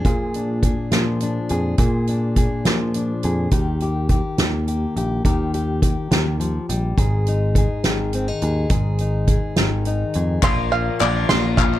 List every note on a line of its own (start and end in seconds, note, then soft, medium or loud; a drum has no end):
0.00 0.92 F3 medium
0.05 1.77 A#2 medium
0.05 0.74 A#2 medium
0.05 0.64 G#4 medium
0.05 kick medium
0.05 closed hi-hat medium
0.34 1.21 D4 medium
0.34 closed hi-hat medium
0.63 1.49 G#4 medium
0.63 kick medium
0.63 closed hi-hat medium
0.92 1.38 A#2 medium
0.92 1.76 F3 medium
0.92 snare medium
0.92 closed hi-hat medium
1.21 1.76 D4 medium
1.21 closed hi-hat medium
1.49 1.73 F2 medium
1.49 1.76 G#4 medium
1.49 closed hi-hat medium
1.78 2.47 A#2 medium
1.78 3.52 A#2 medium
1.78 2.36 G#4 medium
1.78 kick medium
1.78 closed hi-hat medium
2.07 2.94 D4 medium
2.07 closed hi-hat soft
2.36 3.23 G#4 medium
2.36 kick medium
2.36 closed hi-hat medium
2.65 3.12 A#2 medium
2.65 3.49 F3 medium
2.65 snare medium
2.65 closed hi-hat medium
2.94 3.49 D4 medium
2.94 closed hi-hat medium
3.23 3.47 F2 medium
3.23 3.49 G#4 medium
3.23 closed hi-hat soft
3.51 4.21 D#2 medium
3.51 5.24 D#3 medium
3.51 3.82 G4 medium
3.51 kick loud
3.51 closed hi-hat medium
3.80 4.10 G4 medium
3.80 closed hi-hat soft
4.09 4.67 G4 medium
4.09 kick medium
4.09 closed hi-hat medium
4.38 4.85 D#2 medium
4.38 5.22 A#3 medium
4.38 snare medium
4.38 closed hi-hat medium
4.68 4.96 G4 medium
4.68 closed hi-hat medium
4.96 5.19 A#1 medium
4.96 5.22 G4 medium
4.96 closed hi-hat soft
5.25 5.94 D#2 medium
5.25 6.10 D#3 medium
5.25 5.53 G4 medium
5.25 kick loud
5.25 closed hi-hat medium
5.54 5.82 G4 medium
5.54 closed hi-hat medium
5.82 6.95 G4 medium
5.82 kick medium
5.82 closed hi-hat medium
6.11 6.57 D#2 medium
6.11 6.39 D#3 medium
6.11 snare loud
6.11 closed hi-hat medium
6.40 6.69 F3 medium
6.40 closed hi-hat medium
6.69 6.92 A#1 medium
6.69 6.98 G3 medium
6.69 closed hi-hat medium
6.97 7.67 G#1 medium
6.97 8.67 G#2 medium
6.97 7.57 G#4 medium
6.97 kick medium
6.97 closed hi-hat medium
7.27 8.14 D#4 medium
7.27 closed hi-hat medium
7.55 8.42 G#4 medium
7.55 kick medium
7.55 closed hi-hat medium
7.84 8.30 G#1 medium
7.84 9.56 D#3 medium
7.84 snare medium
7.84 closed hi-hat medium
8.13 8.28 C4 medium
8.13 closed hi-hat medium
8.28 8.71 D#4 soft
8.42 8.65 D#2 medium
8.42 8.68 G#4 medium
8.42 closed hi-hat soft
8.70 9.39 G#1 medium
8.70 10.40 G#2 medium
8.70 9.28 G#4 medium
8.70 kick loud
8.70 closed hi-hat medium
8.99 9.86 D#4 medium
8.99 closed hi-hat medium
9.28 10.14 G#4 medium
9.28 kick medium
9.28 closed hi-hat medium
9.56 10.03 G#1 medium
9.56 10.44 D#3 medium
9.56 snare loud
9.56 closed hi-hat medium
9.85 10.40 D#4 medium
9.85 closed hi-hat medium
10.14 10.38 F2 medium
10.14 10.40 G#4 medium
10.14 closed hi-hat medium
10.42 10.88 A#1 loud
10.42 11.00 A#2 medium
10.42 10.98 F3 medium
10.42 10.99 A#3 medium
10.42 11.00 D4 medium
10.42 11.01 F4 medium
10.42 11.28 C6 medium
10.42 kick loud
10.42 clap loud
10.42 ride medium
10.72 11.56 F5 medium
10.72 clap soft
10.72 ride medium
10.99 11.24 A#1 medium
10.99 11.29 F3 medium
10.99 11.29 A#3 medium
10.99 11.29 D4 medium
10.99 11.28 F4 medium
10.99 11.79 D5 medium
10.99 clap medium
10.99 ride medium
11.29 11.75 A#1 medium
11.29 11.79 A#2 medium
11.29 11.79 F3 medium
11.29 11.79 A#3 medium
11.29 11.79 D4 medium
11.29 11.79 F4 medium
11.29 11.79 C6 medium
11.29 snare loud
11.29 clap soft
11.29 ride medium
11.57 11.79 F5 medium
11.57 kick medium
11.57 clap loud
11.57 ride medium
11.74 clap soft